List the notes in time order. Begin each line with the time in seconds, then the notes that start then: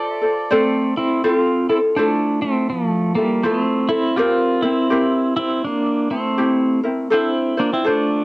Already playing: F4 A4 C5 D5
0.22 F4 A4 C5
0.51 A3 C4 A4 C5 D5
0.97 C4 E4
1.24 C4 E4 F4 A4 C5
1.36 F4
1.69 C4 E4 A4
1.97 A3 D4 E4 F4 A4 C5
2.42 A3 C4
2.70 F3 A3
3.15 G3 A#3 E4 F4 A4
3.43 A3 B3 E4 F4 A4 C5
3.61 C4
3.89 C4 E4 A4
4.16 C4 F4 G4 A#4
4.62 C4 E4 A#4
4.90 C4 E4 G4 A#4
5.37 C4 E4
5.64 A#3 D4
6.11 A3 C4 E4
6.38 C4 E4 G4
6.83 C4 E4 A#4
7.10 C4 D4 E4 A4 C5
7.57 A#3 D4 F4 C5
7.73 C4 E4
7.84 A3 D4 F4 A4 C5